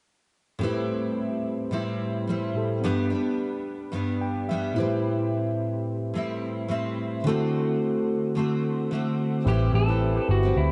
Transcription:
0.59 steel-string acoustic guitar A2 G3, tine electric piano A2 C4 E4 G4
0.63 steel-string acoustic guitar C4 E4, tine electric piano B4
1.71 steel-string acoustic guitar A2 G3 C4 E4
2.27 steel-string acoustic guitar A2 G3 C4 E4
2.55 tine electric piano A2 C4 E4 G4 A4
2.81 steel-string acoustic guitar G2 G3 B3, tine electric piano B3 D4 G4
2.86 steel-string acoustic guitar D4, tine electric piano B4
3.10 steel-string acoustic guitar B3 D4
3.14 steel-string acoustic guitar G3
3.92 steel-string acoustic guitar G2 G3 B3 D4
4.21 tine electric piano G5
4.49 steel-string acoustic guitar G2 G3 B3, tine electric piano E5
4.53 steel-string acoustic guitar D4
4.74 tine electric piano A2 C4 E4 G4, steel-string acoustic guitar E4
4.78 steel-string acoustic guitar A2 G3 C4, tine electric piano B4
6.14 steel-string acoustic guitar A2 G3 C4 E4
6.68 steel-string acoustic guitar A2 G3 C4 E4
7.24 tine electric piano D3 C4 E4 F#4, steel-string acoustic guitar D3 A3
7.28 steel-string acoustic guitar C4 F#4, tine electric piano A4
8.35 steel-string acoustic guitar D3 A3 C4 F#4
8.91 steel-string acoustic guitar D3 A3 C4 F#4
9.44 picked electric bass A1, steel-string acoustic guitar A2 G3, tine electric piano C4 E4 G4 B4, clean electric guitar G4
9.49 steel-string acoustic guitar C4 E4
9.73 picked electric bass A1, clean electric guitar A4
9.87 tine electric piano C4 E4 G4 B4, steel-string acoustic guitar C4 E4
9.92 steel-string acoustic guitar G3
10.15 tine electric piano C4 E4 G4 B4
10.29 picked electric bass G1, clean electric guitar F#4
10.43 steel-string acoustic guitar G3 C4 E4
10.57 picked electric bass D2, clean electric guitar E4

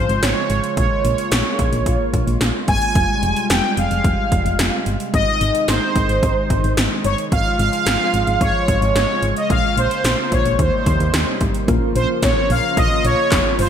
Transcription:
Already playing: analog synth pad C#3 F3 G#3 F4, analog polysynth C5
0.09 fm bass G#1, closed hi-hat
0.22 fm bass G#1, analog polysynth C#5, snare, closed hi-hat
0.50 fm bass G#1, closed hi-hat
0.64 closed hi-hat
0.77 fm bass A#1, analog synth pad A#3, analog polysynth C#5, kick, closed hi-hat
1.05 fm bass A#1, closed hi-hat
1.18 closed hi-hat
1.32 fm bass A#1, snare, closed hi-hat
1.59 fm bass A#1, kick, closed hi-hat
1.73 fm bass A#1, closed hi-hat
1.86 fm bass A#1, kick, closed hi-hat
2.14 fm bass A#1, kick, closed hi-hat
2.27 fm bass A#1, closed hi-hat
2.41 fm bass A#1, snare, closed hi-hat
2.68 fm bass G1, analog polysynth G#5, kick, closed hi-hat
2.82 closed hi-hat
2.95 fm bass F1, analog synth pad C3 G3 G#3, kick, closed hi-hat
3.23 fm bass F1, closed hi-hat
3.36 closed hi-hat
3.50 fm bass F1, analog polysynth G5, snare, closed hi-hat
3.77 fm bass F1, analog polysynth F5, closed hi-hat
3.91 fm bass F1, closed hi-hat
4.04 fm bass F1, kick, closed hi-hat
4.32 fm bass F1, kick, closed hi-hat
4.45 fm bass F1, closed hi-hat
4.59 fm bass F1, snare, closed hi-hat
4.86 fm bass G1, closed hi-hat
5.00 closed hi-hat
5.14 fm bass G#1, analog synth pad D#3 D#4, analog polysynth D#5, kick, closed hi-hat
5.41 fm bass G#1, closed hi-hat
5.55 closed hi-hat
5.68 fm bass G#1, analog polysynth C5, snare, closed hi-hat
5.96 fm bass G#1, kick, closed hi-hat
6.09 fm bass G#1, closed hi-hat
6.23 fm bass G#1, kick, closed hi-hat
6.50 fm bass G#1, kick, closed hi-hat
6.64 fm bass G#1, closed hi-hat
6.77 fm bass G#1, snare, closed hi-hat
7.04 fm bass G1, analog polysynth C#5, closed hi-hat
7.18 closed hi-hat
7.32 fm bass G#1, analog synth pad C#3 F3 G#3 F4, analog polysynth F5, kick, closed hi-hat
7.59 fm bass G#1, analog polysynth F5, closed hi-hat
7.73 closed hi-hat
7.86 fm bass G#1, snare, closed hi-hat
8.14 fm bass G#1, closed hi-hat
8.27 fm bass G#1, closed hi-hat
8.41 fm bass G#1, analog polysynth C#5, kick, closed hi-hat
8.68 fm bass G#1, kick, closed hi-hat
8.82 fm bass G#1, closed hi-hat
8.95 fm bass G#1, analog polysynth C#5, snare, closed hi-hat
9.22 fm bass G#1, closed hi-hat
9.37 analog polysynth D#5, closed hi-hat
9.50 fm bass A#1, analog synth pad A#3 F4, analog polysynth F5, kick, closed hi-hat
9.77 fm bass A#1, analog polysynth C5, closed hi-hat
9.91 closed hi-hat
10.04 fm bass A#1, snare, closed hi-hat
10.32 fm bass A#1, analog polysynth C#5, kick, closed hi-hat
10.45 fm bass A#1, closed hi-hat
10.59 fm bass D#2, analog synth pad C3 G3 D#4, analog polysynth C5, kick, closed hi-hat
10.86 fm bass D#2, kick, closed hi-hat
11.00 fm bass D#2, closed hi-hat
11.14 fm bass D#2, snare, closed hi-hat
11.41 fm bass G#1, kick, closed hi-hat
11.54 closed hi-hat
11.68 fm bass A#1, analog synth pad C#3 F3 A#3 F4, tine electric piano A#3 C#4 F4 A#4, kick, closed hi-hat
11.95 fm bass A#1, analog polysynth C5, closed hi-hat
12.23 fm bass A#1, analog polysynth C#5, kick, snare, closed hi-hat
12.50 fm bass A#1, analog polysynth F5, open hi-hat
12.77 fm bass A#1, analog polysynth D#5, kick, closed hi-hat
13.05 fm bass A#1, analog polysynth C#5, closed hi-hat
13.32 fm bass F1, kick, snare, clap, closed hi-hat
13.59 fm bass G1, analog polysynth C5, open hi-hat

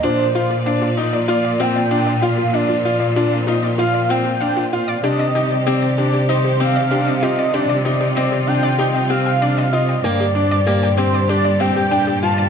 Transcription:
0.03 string section A#2 F3 F4 D5, cello section A#2, upright piano D4, synth arpeggio sound F4, soft synth lead C5
0.19 synth arpeggio sound D5
0.35 synth arpeggio sound F4, upright piano F4
0.50 synth arpeggio sound F4
0.66 upright piano D4, synth arpeggio sound F5
0.82 synth arpeggio sound F4
0.97 upright piano D#4
1.13 synth arpeggio sound D5
1.28 upright piano F4, synth arpeggio sound F4, soft synth lead D5
1.45 synth arpeggio sound F5
1.60 upright piano C4, synth arpeggio sound F4, soft synth lead G5
1.76 synth arpeggio sound D5
1.91 upright piano D4, synth arpeggio sound F4
2.07 synth arpeggio sound D5
2.22 synth arpeggio sound F4, upright piano F4, soft synth lead F5
2.38 synth arpeggio sound F4
2.53 string section C4, upright piano D4, soft synth lead D5, synth arpeggio sound F5
2.69 synth arpeggio sound F4
2.85 upright piano F4
3.00 synth arpeggio sound D5
3.16 upright piano D4, synth arpeggio sound F4
3.32 synth arpeggio sound F5
3.47 upright piano D#4, synth arpeggio sound F4
3.63 synth arpeggio sound D5
3.78 synth arpeggio sound F4, upright piano F4, soft synth lead F5
3.94 synth arpeggio sound D5
4.09 upright piano C4, synth arpeggio sound F4, soft synth lead G5
4.25 synth arpeggio sound F4
4.41 upright piano D4, synth arpeggio sound F5
4.57 synth arpeggio sound F4
4.73 upright piano F4, soft synth lead F5
4.88 synth arpeggio sound D5
5.03 string section C3 D#3 G3 C4 G4, cello section C3, upright piano D4, synth arpeggio sound G4, soft synth lead D#5
5.19 synth arpeggio sound D#5
5.35 upright piano D#4, synth arpeggio sound G4
5.51 synth arpeggio sound D5
5.66 upright piano C4, synth arpeggio sound G4, soft synth lead D5
5.82 synth arpeggio sound D5
5.98 upright piano D4, synth arpeggio sound G4
6.14 synth arpeggio sound G4
6.28 upright piano D#4, soft synth lead C5, synth arpeggio sound D#5
6.45 synth arpeggio sound G4
6.60 upright piano C4, soft synth lead F5
6.76 synth arpeggio sound D5
6.91 upright piano D4, synth arpeggio sound G4
7.07 synth arpeggio sound D#5
7.22 upright piano F4, synth arpeggio sound G4, soft synth lead D#5
7.39 synth arpeggio sound D5
7.53 upright piano D4, string section F4, synth arpeggio sound G4, soft synth lead D5
7.69 synth arpeggio sound D5
7.85 upright piano D#4, synth arpeggio sound G4
8.01 synth arpeggio sound G4
8.16 upright piano C4, synth arpeggio sound D#5
8.32 synth arpeggio sound G4
8.47 upright piano D4, soft synth lead G5
8.63 synth arpeggio sound D5
8.78 upright piano D#4, synth arpeggio sound G4
8.94 synth arpeggio sound D#5
9.10 upright piano C4, synth arpeggio sound G4, soft synth lead F5
9.26 synth arpeggio sound G5
9.42 upright piano D4, synth arpeggio sound D5
9.58 synth arpeggio sound D#5
9.72 upright piano F4, soft synth lead D#5
9.89 synth arpeggio sound G5
10.03 cello section G2, string section A#2 D3 G4, upright piano A#3, soft synth lead D5, synth arpeggio sound G5
10.20 synth arpeggio sound G4
10.35 upright piano D4
10.51 synth arpeggio sound D5
10.67 upright piano A#3, synth arpeggio sound G4
10.83 synth arpeggio sound G5
10.97 upright piano C4, synth arpeggio sound G4, soft synth lead C5
11.14 synth arpeggio sound D5
11.29 upright piano D4, synth arpeggio sound G4, soft synth lead D5
11.45 synth arpeggio sound D5
11.60 upright piano C4, synth arpeggio sound G4, soft synth lead G5
11.76 synth arpeggio sound G4
11.91 upright piano D4, synth arpeggio sound G5
12.07 synth arpeggio sound G4
12.23 upright piano F4, soft synth lead A5
12.38 synth arpeggio sound D5

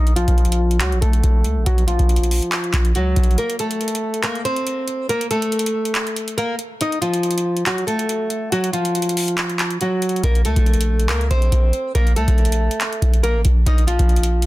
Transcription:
Already playing: 808-style bass A#1, nylon-string guitar D#4 D#5
0.07 closed hi-hat
0.16 nylon-string guitar F3 F4, closed hi-hat
0.28 808-style bass A#1, kick, closed hi-hat
0.38 closed hi-hat
0.45 closed hi-hat
0.52 closed hi-hat
0.71 closed hi-hat
0.80 808-style bass C#2, nylon-string guitar F#3 F#4, clap, closed hi-hat
0.92 808-style bass A#1, closed hi-hat
1.01 808-style bass A#1, nylon-string guitar A3 A4, kick, closed hi-hat
1.13 closed hi-hat
1.23 808-style bass A#1, kick, closed hi-hat
1.44 808-style bass C#2, closed hi-hat
1.56 808-style bass A#1
1.66 808-style bass A#1, nylon-string guitar F#3 F#4, kick, closed hi-hat
1.78 closed hi-hat
1.87 nylon-string guitar F3 F4, closed hi-hat
1.99 808-style bass A#1, kick, closed hi-hat
2.09 closed hi-hat
2.16 closed hi-hat
2.23 closed hi-hat
2.31 open hi-hat
2.42 closed hi-hat
2.52 clap, closed hi-hat
2.64 closed hi-hat
2.73 808-style bass A#1, kick, clap, closed hi-hat
2.85 closed hi-hat
2.95 808-style bass C#2, nylon-string guitar F#3 F#4, closed hi-hat
3.16 808-style bass A#1, kick, closed hi-hat
3.23 closed hi-hat
3.31 closed hi-hat
3.38 nylon-string guitar A#3 A#4, closed hi-hat
3.50 closed hi-hat
3.59 nylon-string guitar A3 A4, closed hi-hat
3.71 closed hi-hat
3.81 closed hi-hat
3.88 closed hi-hat
3.95 closed hi-hat
4.14 closed hi-hat
4.23 nylon-string guitar A#3 A#4, clap, closed hi-hat
4.35 closed hi-hat
4.45 nylon-string guitar C4 C5, closed hi-hat
4.56 closed hi-hat
4.67 closed hi-hat
4.88 closed hi-hat
5.09 nylon-string guitar A#3 A#4, closed hi-hat
5.21 closed hi-hat
5.31 nylon-string guitar A3 A4, closed hi-hat
5.42 closed hi-hat
5.52 closed hi-hat
5.59 closed hi-hat
5.66 closed hi-hat
5.85 closed hi-hat
5.95 clap, closed hi-hat
6.07 closed hi-hat
6.16 closed hi-hat
6.28 closed hi-hat
6.38 nylon-string guitar A#3 A#4, closed hi-hat
6.59 closed hi-hat
6.81 nylon-string guitar D#4 D#5, closed hi-hat
6.92 closed hi-hat
7.02 nylon-string guitar F3 F4, closed hi-hat
7.14 closed hi-hat
7.23 closed hi-hat
7.31 closed hi-hat
7.38 closed hi-hat
7.57 closed hi-hat
7.66 nylon-string guitar F#3 F#4, clap, closed hi-hat
7.78 closed hi-hat
7.87 nylon-string guitar A3 A4, closed hi-hat
7.99 closed hi-hat
8.09 closed hi-hat
8.30 closed hi-hat
8.52 nylon-string guitar F#3 F#4, closed hi-hat
8.64 closed hi-hat
8.73 nylon-string guitar F3 F4, closed hi-hat
8.85 closed hi-hat
8.95 closed hi-hat
9.02 closed hi-hat
9.09 closed hi-hat
9.17 open hi-hat
9.28 closed hi-hat
9.38 clap, closed hi-hat
9.50 closed hi-hat
9.59 clap, closed hi-hat
9.71 closed hi-hat
9.81 nylon-string guitar F#3 F#4, closed hi-hat
10.02 closed hi-hat
10.09 closed hi-hat
10.16 closed hi-hat
10.23 808-style bass A#1, nylon-string guitar A#3 A#4, kick, closed hi-hat
10.35 closed hi-hat
10.45 808-style bass C#2, nylon-string guitar A3 A4, closed hi-hat
10.56 808-style bass A#1, kick, closed hi-hat
10.66 closed hi-hat
10.74 closed hi-hat
10.81 closed hi-hat
11.00 closed hi-hat
11.09 808-style bass C#2, nylon-string guitar A#3 A#4, clap, closed hi-hat
11.21 closed hi-hat
11.31 808-style bass A#1, nylon-string guitar C4 C5, kick, closed hi-hat
11.42 closed hi-hat
11.52 808-style bass A#1, kick, closed hi-hat
11.73 closed hi-hat
11.95 808-style bass A#1, nylon-string guitar A#3 A#4, kick, closed hi-hat
12.07 closed hi-hat
12.16 808-style bass C2, nylon-string guitar A3 A4, closed hi-hat
12.28 808-style bass A#1, kick, closed hi-hat
12.38 closed hi-hat
12.45 closed hi-hat
12.52 closed hi-hat
12.71 closed hi-hat
12.81 clap, closed hi-hat
12.93 closed hi-hat
13.02 808-style bass A#1, kick, closed hi-hat
13.14 closed hi-hat
13.23 nylon-string guitar A#3 A#4, closed hi-hat
13.35 808-style bass A1
13.45 808-style bass A#1, kick, closed hi-hat
13.66 808-style bass A#1, nylon-string guitar D#4 D#5, kick, closed hi-hat
13.78 closed hi-hat
13.87 nylon-string guitar F3 F4, closed hi-hat
13.99 808-style bass A#1, kick, closed hi-hat
14.09 closed hi-hat
14.16 closed hi-hat
14.23 closed hi-hat
14.42 closed hi-hat

